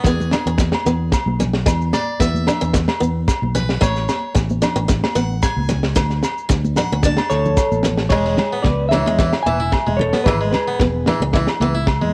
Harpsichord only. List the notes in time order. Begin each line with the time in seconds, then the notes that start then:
0.05 G#4
1.93 D5
2.20 E5
3.55 B4
3.82 C#5
5.16 F#5
5.43 G#5
6.77 F#5
7.04 A5
8.11 G#3
8.26 G#3
8.53 B3
8.93 E3
9.06 G#3
9.19 E3
9.46 E3
9.60 E4
9.87 G#3
10.13 B3
10.26 E3
10.41 G#3
10.68 B3
11.08 E3
11.34 E3
11.61 E3
11.75 E4
12.02 G#3